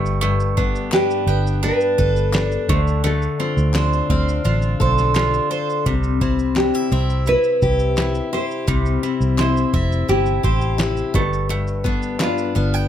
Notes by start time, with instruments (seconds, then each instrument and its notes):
Already playing: fingered electric bass G1, steel-string acoustic guitar G2 G4, mandolin A3
0.06 shaker
0.21 steel-string acoustic guitar G2, mandolin A3, shaker
0.40 shaker
0.57 steel-string acoustic guitar B3, mandolin D4, kick, shaker
0.75 shaker
0.92 steel-string acoustic guitar D4, nylon-string guitar G4, mandolin B4, snare, clap, shaker
1.11 shaker
1.27 fingered electric bass G1, steel-string acoustic guitar B3, mandolin G5, shaker
1.47 shaker
1.63 mandolin D4, steel-string acoustic guitar D4, nylon-string guitar B4, shaker
1.81 shaker
1.98 fingered electric bass G1, steel-string acoustic guitar A4, mandolin B4, kick, shaker
2.16 shaker
2.33 mandolin D4, steel-string acoustic guitar D4, snare, clap, shaker
2.52 shaker
2.69 fingered electric bass D2, steel-string acoustic guitar D3, mandolin A3, nylon-string guitar C5, kick
2.87 shaker
3.04 steel-string acoustic guitar D3, mandolin A3, nylon-string guitar A4, shaker
3.22 shaker
3.40 steel-string acoustic guitar C4, mandolin F4, shaker
3.57 fingered electric bass D2, shaker
3.74 steel-string acoustic guitar D4, mandolin C5, snare, clap, shaker
3.93 shaker
4.10 fingered electric bass D2, steel-string acoustic guitar C4, mandolin F5, kick
4.29 shaker
4.45 fingered electric bass A1, steel-string acoustic guitar D4, mandolin F4, shaker
4.62 shaker
4.80 fingered electric bass B1, steel-string acoustic guitar A4, mandolin C5, kick, shaker
4.98 snare, shaker
5.15 steel-string acoustic guitar D4, mandolin F4, snare, clap, shaker
5.34 shaker
5.51 steel-string acoustic guitar A4, mandolin C5, shaker
5.70 shaker
5.86 fingered electric bass C2, steel-string acoustic guitar C3, mandolin G3, kick, shaker
6.04 shaker
6.21 steel-string acoustic guitar C4, mandolin E4, kick, shaker
6.39 shaker
6.56 steel-string acoustic guitar D4, nylon-string guitar G4, snare, clap, shaker
6.74 steel-string acoustic guitar E4, shaker
6.91 fingered electric bass C2, steel-string acoustic guitar C4, mandolin E5, shaker
7.10 shaker
7.26 mandolin E4, steel-string acoustic guitar E4, nylon-string guitar B4, shaker
7.44 shaker
7.62 fingered electric bass C2, steel-string acoustic guitar G4, kick, shaker
7.79 shaker
7.97 steel-string acoustic guitar E4, mandolin E4, snare, clap, shaker
8.15 shaker
8.33 steel-string acoustic guitar G4, mandolin C5, nylon-string guitar C5
8.51 shaker
8.67 fingered electric bass C2, steel-string acoustic guitar C3, mandolin G3, kick, shaker
8.86 shaker
9.03 steel-string acoustic guitar C4, mandolin E4, shaker
9.21 fingered electric bass C2, shaker
9.38 steel-string acoustic guitar E4, nylon-string guitar E4, mandolin C5, snare, clap, shaker
9.57 shaker
9.73 fingered electric bass F1, steel-string acoustic guitar C4, mandolin E5, kick, shaker
9.92 shaker
10.08 fingered electric bass G1, steel-string acoustic guitar E4, mandolin E4, nylon-string guitar G4, shaker
10.26 shaker
10.43 fingered electric bass A1, steel-string acoustic guitar G4, mandolin C5, kick, shaker
10.61 shaker
10.78 steel-string acoustic guitar E4, mandolin E4, snare, clap, shaker
10.97 shaker
11.14 fingered electric bass G1, steel-string acoustic guitar G2, mandolin A3, nylon-string guitar A4, kick
11.33 shaker
11.49 steel-string acoustic guitar G2, mandolin A3, shaker
11.67 shaker
11.84 steel-string acoustic guitar B3, mandolin D4, kick, shaker
12.02 shaker
12.19 steel-string acoustic guitar D4, nylon-string guitar F4, mandolin B4, snare, clap, shaker
12.38 shaker
12.55 fingered electric bass G1, steel-string acoustic guitar B3, mandolin F5, shaker
12.73 mandolin G5, shaker